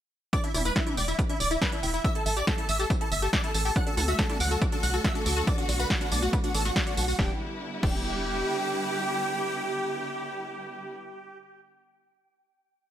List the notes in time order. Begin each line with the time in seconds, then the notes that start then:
0.33 D4 D5 D6, kick, closed hi-hat, tambourine
0.44 D4 E4 E5, closed hi-hat
0.54 E1 E4 D5 E5, open hi-hat, mid tom, tambourine
0.65 E4 B4 B5, closed hi-hat, tambourine
0.76 D4 E4 E5, kick, snare, closed hi-hat, tambourine
0.87 D4 E4 E5, closed hi-hat, mid tom
0.97 E1 D5 G5 D6, open hi-hat, tambourine
1.08 E4 E5, closed hi-hat, tambourine
1.19 B4, kick, closed hi-hat, tambourine
1.29 D4 E4 E5, closed hi-hat
1.40 D1 D5 D6, open hi-hat, tambourine
1.51 E4 E5, closed hi-hat, tambourine
1.61 D4 B4 B5, kick, snare, closed hi-hat, tambourine
1.72 D4 E4 E5, closed hi-hat
1.83 E1 E4 E5 G5, open hi-hat, tambourine
1.94 E4 E5, closed hi-hat, tambourine
2.04 E4 E5 E6, kick, closed hi-hat, tambourine
2.15 E4 A4 A5, closed hi-hat
2.26 A1 A4 E5 A5, open hi-hat, tambourine
2.37 G4 D5 D6, closed hi-hat, tambourine
2.47 E4 A4 A5, kick, snare, closed hi-hat, tambourine
2.58 E4 A4 A5, closed hi-hat
2.69 A1 E5 A5 E6, open hi-hat, tambourine
2.79 G4 A4 A5, closed hi-hat, tambourine
2.90 C5, kick, closed hi-hat, tambourine
3.01 E4 A4 A5, closed hi-hat
3.12 G1 E5 E6, open hi-hat, tambourine
3.22 G4 A4 A5, closed hi-hat, tambourine
3.33 E4 D5 D6, kick, snare, closed hi-hat, tambourine
3.44 E4 A4 A5, closed hi-hat
3.54 A1 A4 A5, open hi-hat, tambourine
3.65 G4 A4 A5, open hi-hat, tambourine
3.76 D3 F#3 A3 D4 F#4 F#5 F#6, kick, closed hi-hat, tambourine
3.87 D4 A4 A5, closed hi-hat
3.97 D2 A4 F#5 A5, open hi-hat, mid tom, tambourine
4.08 F#4 E5 E6, closed hi-hat, tambourine
4.19 D4 A4 A5, kick, snare, closed hi-hat, tambourine
4.29 D4 A4 A5, closed hi-hat, mid tom
4.40 D2 F#5 D6 F#6, open hi-hat, tambourine
4.51 F#4 A4 A5, closed hi-hat, tambourine
4.62 D5, kick, closed hi-hat, tambourine
4.72 D4 A4 A5, closed hi-hat
4.83 C2 F#5 F#6, open hi-hat, tambourine
4.94 F#4 A4 A5, closed hi-hat, tambourine
5.04 D4 E5 E6, kick, snare, closed hi-hat, tambourine
5.15 D4 A4 A5, closed hi-hat
5.26 D2 A4 A5 D6, open hi-hat, tambourine
5.37 F#4 A4 A5, closed hi-hat, tambourine
5.47 B3 D4 D5 D6, kick, closed hi-hat, tambourine
5.58 D4 F#4 F#5, closed hi-hat
5.69 B1 F#4 D5 F#5, open hi-hat, tambourine
5.79 F#4 B4 B5, closed hi-hat, tambourine
5.90 D4 F#4 F#5, kick, snare, closed hi-hat, tambourine
6.01 D4 F#4 F#5, closed hi-hat
6.12 B1 D5 A5 D6, open hi-hat, tambourine
6.22 F#4 F#5, closed hi-hat, tambourine
6.33 B4, kick, closed hi-hat, tambourine
6.44 D4 F#4 F#5, closed hi-hat
6.54 A1 A4 D5 A5, open hi-hat, tambourine
6.65 F#4 F#5, snare, closed hi-hat, tambourine
6.76 D4 F#4 F#5, kick, snare, closed hi-hat, tambourine
6.87 D4 F#4 F#5, closed hi-hat
6.97 B1 F#4 F#5 A5, open hi-hat, tambourine
7.08 F#4 F#5, open hi-hat, tambourine
7.19 E1 D3 G3 B3 D4 E4 G4 G5, kick, snare
7.83 E1 D4 G4 G5, kick, crash